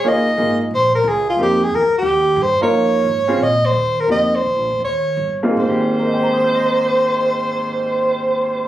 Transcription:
0.04 upright bass C#2, upright piano A#3 D#4 F4 G#4, soprano saxophone D#5
0.37 upright bass G#1, upright piano A#3 D#4 F4 G#4
0.71 upright bass A#1, soprano saxophone C5
0.95 soprano saxophone A#4
1.04 upright bass C#2
1.08 soprano saxophone G#4
1.29 soprano saxophone F4
1.37 upright bass F2, upright piano A#3 C4 D#4 G4
1.42 soprano saxophone G4
1.63 soprano saxophone G#4
1.71 upright bass E2
1.75 soprano saxophone A#4
1.91 muted upright bass stroke
1.98 soprano saxophone G4
2.02 upright bass D#2
2.36 upright bass G2
2.43 soprano saxophone C5
2.58 upright piano A#3 D#4 F4 A#4, soprano saxophone C#5, muted upright bass stroke
2.70 upright bass F2
3.04 upright bass G#2
3.28 upright piano C4 C#4 F4 G#4
3.38 upright bass A#2
3.43 soprano saxophone D#5
3.65 soprano saxophone C5
3.73 upright bass D#2
4.00 soprano saxophone A#4
4.07 upright bass F2, upright piano A#3 C4 D#4 G4, soprano saxophone D#5
4.36 soprano saxophone C5
4.43 upright bass C2
4.56 upright bass A#1
4.69 upright bass F1
4.80 upright bass D#2
4.84 soprano saxophone C#5
5.17 upright bass G1
5.43 upright piano G#2 A#3 C4 D#4 F4
5.51 upright piano G#3
5.57 upright bass G#1, upright piano A#3, soprano saxophone C5, tenor saxophone C5
5.64 upright piano C4
5.70 upright piano G4
5.99 upright piano A#4
6.06 upright piano D#5
6.14 upright piano G5
6.23 upright piano A#5
6.33 upright piano D#6
6.44 upright piano G6
6.55 upright piano A#6

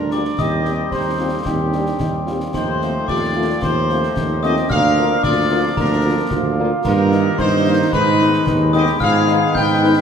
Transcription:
Already playing: tuba D2, trombone section G3 D4, euphonium D4
0.11 french horn section A#3 D4 G4, flute section F4, woodwind section D5, trumpet section D5, glockenspiel D6, snare
0.25 snare
0.38 tuba D#2, trombone section G3 C4, flute section G4, euphonium G4, woodwind section D#5, trumpet section D#5, glockenspiel D#6, concert bass drum, snare
0.65 french horn section G3 C4 G4, euphonium D#4, snare
0.91 tuba D#2, flute section D#4, euphonium G4, woodwind section C5, trumpet section C5, glockenspiel C6, concert bass drum, snare
1.19 french horn section G3 C4 G4, euphonium F4
1.45 tuba D#2, flute section C4, euphonium D#4, woodwind section G4, trumpet section G4, glockenspiel G5, concert bass drum, snare
1.73 french horn section G3 C4 G4, euphonium D4, snare
1.86 snare
2.00 tuba D#2, euphonium D#4, concert bass drum, snare
2.26 french horn section G3 C4 G4, euphonium F4, snare
2.40 snare
2.53 tuba D#2, trombone section F3 A3, flute section D#4, euphonium D#4, woodwind section C5, trumpet section C5, glockenspiel C6, concert bass drum, snare, crash
2.81 french horn section A3 C4 F4, snare
3.07 tuba D#2, flute section F4, euphonium G4, trumpet section D5, woodwind section D5, glockenspiel D6, concert bass drum, snare
3.35 french horn section A3 C4 F4, euphonium F4
3.61 tuba D#2, flute section D#4, trumpet section C5, woodwind section C5, glockenspiel C6, concert bass drum, snare
3.89 french horn section A3 C4 F4, snare
4.03 snare
4.16 tuba D#2, euphonium D#4, concert bass drum, snare
4.42 french horn section A3 C4 F4, euphonium C4, flute section G4, trumpet section D#5, woodwind section D#5, glockenspiel D#6, snare
4.57 snare
4.69 tuba D2, trombone section F3 A#3, euphonium D4, flute section A#4, woodwind section F5, trumpet section F5, glockenspiel F6, concert bass drum, snare
4.97 french horn section A#3 D4 F4, snare
5.23 tuba D2, flute section F4, woodwind section D5, trumpet section D5, glockenspiel D6, concert bass drum, snare
5.51 french horn section A#3 D4 F4
5.77 tuba D2, flute section D4, euphonium F4, trumpet section A#4, woodwind section A#4, glockenspiel A#5, concert bass drum, snare
6.04 french horn section A#3 D4 F4
6.30 tuba D2, concert bass drum, snare
6.58 french horn section A#3 D4 F4
6.84 tuba G2, trombone section D#3 A#3, flute section D#4, woodwind section A#4, trumpet section A#4, glockenspiel A#5, concert bass drum, snare, crash
7.12 french horn section A#3 D#4, snare
7.38 tuba G2, flute section D#4, euphonium D#4, woodwind section C5, trumpet section C5, glockenspiel C6, concert bass drum, snare
7.66 french horn section A#3 D#4
7.92 tuba G#2, trombone section G#3, flute section D#4, woodwind section B4, trumpet section B4, glockenspiel B5, concert bass drum, snare
8.19 french horn section G#3 B3 D#4, snare
8.33 snare
8.46 tuba D#2, euphonium D#4, concert bass drum, snare
8.73 french horn section G#3 B3 D#4, flute section G4, woodwind section D#5, trumpet section D#5, glockenspiel D#6, snare
8.87 snare
9.00 tuba G#2, trombone section D#3 B3, euphonium F4, flute section G#4, woodwind section F5, trumpet section F5, glockenspiel F6, concert bass drum, snare
9.27 french horn section G#3 B3 D#4, euphonium D#4, snare
9.54 tuba G#2, flute section B4, woodwind section G5, trumpet section G5, glockenspiel G6, concert bass drum, snare
9.83 french horn section G#3 B3 D#4

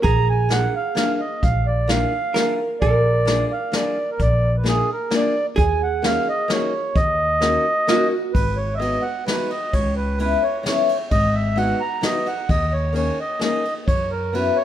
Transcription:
0.03 upright bass A#1, hollow-body jazz guitar G#4, accordion A#5, kick, closed hi-hat
0.30 accordion G#5
0.49 steel-string acoustic guitar A#3 D4 F4 G#4, accordion F#5, snare, closed hi-hat
0.76 accordion F5
0.95 steel-string acoustic guitar A#3 D4 F4 G#4, accordion F5, snare, closed hi-hat
1.20 accordion D#5
1.43 upright bass A#1, accordion F5, kick, closed hi-hat
1.67 accordion D5
1.88 steel-string acoustic guitar A#3 D4 F4 G#4, accordion F5, snare, closed hi-hat
2.34 steel-string acoustic guitar A#3 D4 F4 G#4, hollow-body jazz guitar A#4, snare, closed hi-hat
2.81 upright bass A#1, hollow-body jazz guitar A#4, accordion D5, kick, closed hi-hat
3.25 steel-string acoustic guitar A#3 D4 F4 G#4, snare, closed hi-hat
3.52 accordion F5
3.72 steel-string acoustic guitar A#3 D4 F4 G#4, snare, closed hi-hat
3.76 accordion D5
4.11 accordion A#4
4.19 upright bass A#1, accordion D5, kick, closed hi-hat
4.57 accordion B4
4.64 steel-string acoustic guitar A#3 D4 F4 G#4, accordion G#4, snare, closed hi-hat
4.92 accordion A#4
5.11 steel-string acoustic guitar A#3 D4 F4 G#4, snare, closed hi-hat
5.16 accordion D5
5.56 upright bass D#2, hollow-body jazz guitar G#4, accordion G#5, kick, closed hi-hat
5.83 accordion F#5
6.02 steel-string acoustic guitar A#3 C#4 D#4 F#4, accordion F5, snare, closed hi-hat
6.29 accordion D#5
6.48 steel-string acoustic guitar A#3 C#4 D#4 F#4, accordion C#5, snare, closed hi-hat
6.95 upright bass D#2, accordion D#5, kick, closed hi-hat
7.41 steel-string acoustic guitar A#3 C#4 D#4 F#4, snare, closed hi-hat
7.87 steel-string acoustic guitar A#3 C#4 D#4 F#4, hollow-body jazz guitar F#4, snare, closed hi-hat
8.33 upright bass G#1, accordion B4, kick, ride
8.56 accordion C#5
8.75 accordion D#5 E5
8.79 steel-string acoustic guitar G#3 B3 D#4 F#4, ride
9.02 accordion F#5
9.26 steel-string acoustic guitar G#3 B3 D#4 F#4, accordion B4, snare, ride
9.50 accordion D#5, ride
9.73 upright bass C#2, accordion C#5, kick, ride
9.96 accordion B4
10.18 steel-string acoustic guitar G#3 B3 C#4 E4, accordion B4, ride
10.43 accordion C#5
10.63 steel-string acoustic guitar G#3 B3 C#4 E4, accordion C#5, snare, ride
10.89 ride
11.11 upright bass G#1, accordion D#5, kick, ride
11.34 accordion E5
11.56 steel-string acoustic guitar G#3 B3 D#4 F#4, accordion F#5, ride
11.81 accordion A#5
12.01 steel-string acoustic guitar G#3 B3 D#4 F#4, accordion D#5, snare, ride
12.26 accordion F#5, ride
12.49 upright bass D#2, accordion D#5, kick, ride
12.73 accordion C#5
12.93 steel-string acoustic guitar A#3 C#4 D#4 G#4, accordion C#5, ride
13.21 accordion D#5
13.39 steel-string acoustic guitar A#3 C#4 D#4 G#4, accordion D#5, snare, ride
13.65 ride
13.87 upright bass F#2, accordion C#5, kick, ride
14.11 accordion A#4
14.33 steel-string acoustic guitar B3 C#4 E4 F#4, accordion B4, ride
14.56 accordion C#5

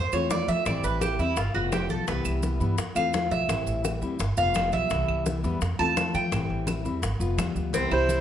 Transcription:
Already playing: upright bass F2, cuban tres C5
0.12 upright bass E2, steel-string acoustic guitar E3 A3 C4 F4, cuban tres C#5, high conga, claves, maracas
0.30 steel-string acoustic guitar A3 C4 F4, cuban tres D5, high bongo, low bongo, high conga, maracas
0.48 upright bass F3, cuban tres E5, high conga, maracas
0.66 upright bass A1, steel-string acoustic guitar E3 G3 C4 E4, cuban tres D5, high bongo, high conga, claves, maracas
0.83 upright bass A1, cuban tres B4, high conga, maracas
1.01 steel-string acoustic guitar E3 C4 E4, cuban tres G4, high bongo, high conga, claves, maracas
1.19 upright bass E2, steel-string acoustic guitar G3 C4 E4, cuban tres E4, high bongo, high conga, maracas
1.36 upright bass G1, cuban tres F4, muted steel-string acoustic guitar stroke, high bongo, high conga, maracas
1.54 upright bass F1, steel-string acoustic guitar B3 F4, cuban tres F#4, high bongo, high conga
1.72 steel-string acoustic guitar G3 B3 F4, cuban tres G4, high bongo, low bongo, high conga, claves, maracas
1.90 upright bass B1, cuban tres A4, high bongo, high conga, maracas
2.07 upright bass C2, steel-string acoustic guitar C3 E3 G3 B3 E4, cuban tres B4, high bongo, maracas
2.25 upright bass C2, high conga, claves, maracas
2.42 steel-string acoustic guitar E3 G3 B3 E4, high bongo, high conga, maracas
2.60 upright bass G2, steel-string acoustic guitar E3 G3 B3 E4, high conga, maracas
2.78 upright bass F2, muted steel-string acoustic guitar stroke, high bongo, high conga, maracas
2.95 upright bass E2, steel-string acoustic guitar E3 A3 C4 F4, cuban tres F5, high conga, claves, maracas
3.13 steel-string acoustic guitar A3 C4 F4, high bongo, low bongo, high conga, maracas
3.31 upright bass B1, cuban tres E5, high conga, maracas
3.48 upright bass A1, steel-string acoustic guitar E3 G3 C4 E4, high bongo, claves, maracas
3.66 upright bass A1, high conga, maracas
3.84 steel-string acoustic guitar E3 G3 C4 E4, high bongo, high conga, claves, maracas
4.02 upright bass D2, steel-string acoustic guitar G3 C4 E4, high bongo, high conga, maracas
4.19 upright bass G1, muted steel-string acoustic guitar stroke, high bongo, high conga, maracas
4.37 upright bass F1, steel-string acoustic guitar B3 F4, cuban tres F5, high bongo, high conga, maracas
4.54 steel-string acoustic guitar G3 B3 F4, high bongo, low bongo, high conga, claves, maracas
4.72 upright bass B1, cuban tres E5, high bongo, high conga, maracas
4.90 upright bass C2, steel-string acoustic guitar C3 E3 G3 B3 E4, high bongo, maracas
5.08 upright bass C2, high conga, claves
5.26 steel-string acoustic guitar E3 G3 B3 E4, high bongo, high conga, maracas
5.43 upright bass E2, steel-string acoustic guitar E3 G3 B3 E4, high conga, maracas
5.61 upright bass F2, muted steel-string acoustic guitar stroke, high bongo, high conga, maracas
5.79 upright bass E2, steel-string acoustic guitar E3 A3 C4 F4, cuban tres A5, high conga, claves
5.97 steel-string acoustic guitar A3 C4 F4, high bongo, low bongo, high conga, maracas
6.14 upright bass F3, cuban tres G5, high conga, maracas
6.31 upright bass A1, steel-string acoustic guitar E3 G3 C4 E4, high bongo, claves, maracas
6.50 upright bass A1, high conga
6.67 steel-string acoustic guitar E3 G3 C4 E4, high bongo, high conga, claves, maracas
6.85 upright bass E2, steel-string acoustic guitar G3 C4 E4, high bongo, high conga, maracas
7.02 upright bass G1, muted steel-string acoustic guitar stroke, high bongo, high conga, maracas
7.20 upright bass F1, steel-string acoustic guitar B3 F4, high bongo, high conga, maracas
7.38 upright bass E2, steel-string acoustic guitar G3 B3 F4, high bongo, low bongo, high conga, claves, maracas
7.55 upright bass D2, high bongo, high conga, maracas
7.73 upright bass C2, steel-string acoustic guitar C3 E3 G3 B3 E4, cuban tres C4, cowbell, high conga, maracas
7.91 upright bass C2, cuban tres E4, nylon-string guitar G4, clarinet C5, cowbell, high conga, claves
8.09 steel-string acoustic guitar E3 G3 B3 E4, cowbell, high conga, maracas

